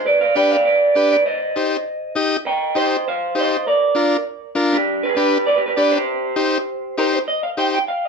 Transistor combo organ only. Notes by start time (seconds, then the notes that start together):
0.35 D4 G4 B4
0.95 D4 G4 B4
1.56 D#4 G4 C5
2.15 D#4 G4 D#5
2.75 D#4 G4 C5
3.35 D#4 G4 C5
3.95 D4 F4 A#4
4.55 D4 F4 A#4
5.16 D4 G4 B4
5.77 D4 G4 B4
6.36 D#4 G4 C5
6.98 D#4 G4 C5
7.57 D#4 G4 C5